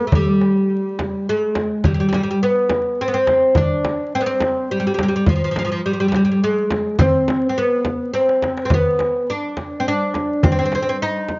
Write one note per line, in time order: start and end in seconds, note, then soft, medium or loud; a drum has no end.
0.07 0.14 A3 medium
0.12 1.25 G3 medium
0.12 frame drum medium
0.12 darbuka dum medium
0.42 darbuka tek medium
0.70 darbuka ka soft
0.99 darbuka tek medium
0.99 frame drum medium
1.27 1.85 G#3 medium
1.27 darbuka ka soft
1.55 darbuka tek medium
1.55 frame drum medium
1.84 1.93 G3 medium
1.84 frame drum medium
1.84 darbuka dum medium
1.94 1.99 G3 medium
2.00 2.07 G3 medium
2.09 2.13 G3 medium
2.13 2.22 G3 medium
2.13 darbuka tek medium
2.13 frame drum medium
2.23 2.29 G3 medium
2.30 2.38 G3 medium
2.43 3.01 B3 medium
2.69 darbuka tek medium
2.69 frame drum medium
3.01 3.07 C4 medium
3.08 3.14 B3 medium
3.14 3.57 C4 medium
3.27 darbuka tek medium
3.27 frame drum medium
3.55 4.15 D4 medium
3.55 frame drum medium
3.55 darbuka dum medium
3.85 darbuka tek medium
3.85 frame drum medium
4.15 4.22 C4 medium
4.21 4.26 B3 medium
4.26 4.71 C4 medium
4.41 darbuka tek medium
4.41 frame drum medium
4.71 4.79 G3 medium
4.80 4.86 G3 medium
4.87 4.93 G3 medium
4.94 5.01 G3 medium
4.99 darbuka tek medium
4.99 frame drum medium
5.03 5.07 G3 medium
5.08 5.15 G3 medium
5.16 5.23 G3 medium
5.26 5.34 F3 medium
5.26 frame drum medium
5.26 darbuka dum medium
5.36 5.43 F3 soft
5.44 5.50 F3 medium
5.51 5.58 F3 medium
5.56 5.64 F3 medium
5.56 darbuka tek medium
5.56 frame drum medium
5.65 5.71 F3 medium
5.72 5.80 F3 medium
5.86 5.92 G3 medium
5.93 5.99 G3 medium
6.00 6.07 G3 medium
6.08 6.14 G3 medium
6.08 frame drum medium
6.15 6.23 G3 medium
6.15 darbuka tek medium
6.25 6.30 G3 medium
6.32 6.38 G3 medium
6.44 6.99 G#3 medium
6.71 darbuka tek medium
6.71 frame drum medium
6.99 7.48 C4 medium
6.99 frame drum medium
6.99 darbuka dum medium
7.28 darbuka tek medium
7.28 frame drum medium
7.50 7.57 C4 medium
7.58 8.13 B3 medium
7.58 darbuka ka soft
7.85 frame drum medium
8.14 8.64 C4 medium
8.14 darbuka tek medium
8.29 darbuka ka medium
8.42 darbuka tek medium
8.42 frame drum medium
8.57 darbuka ka medium
8.65 8.72 C4 medium
8.70 9.31 B3 medium
8.70 frame drum medium
8.70 darbuka dum medium
8.99 darbuka tek medium
8.99 frame drum medium
9.30 9.80 D4 medium
9.57 darbuka tek medium
9.57 frame drum medium
9.80 9.86 C4 medium
9.88 10.43 D4 medium
10.14 darbuka tek medium
10.14 frame drum medium
10.43 10.51 C4 medium
10.43 darbuka dum medium
10.43 frame drum medium
10.52 10.58 C4 medium
10.59 10.64 C4 medium
10.65 10.73 C4 medium
10.72 10.81 C4 medium
10.72 darbuka tek medium
10.72 frame drum medium
10.82 10.88 C4 medium
10.89 10.96 C4 medium
11.02 11.39 D#4 medium
11.29 frame drum medium